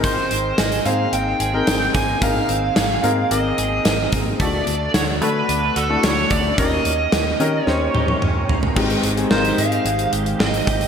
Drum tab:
CC |----------------|----------------|----------------|----------------|
HH |x-x-xxx-x-x-x-x-|x-x-x-x-x-x-x-x-|x-x-x-x-x-x-x-x-|x-x-x-x---------|
SD |----o-------o---|----o-------o---|----o-------o---|----o---o-------|
T1 |----------------|----------------|----------------|----------oo----|
T2 |----------------|----------------|----------------|------------o---|
FT |----------------|----------------|----------------|--------------oo|
BD |o-------------o-|o-------------o-|o-------------o-|o---------------|

CC |x---------------|
HH |-xxx-xxxxxxx-xxx|
SD |----o-------o---|
T1 |----------------|
T2 |----------------|
FT |----------------|
BD |o-------------o-|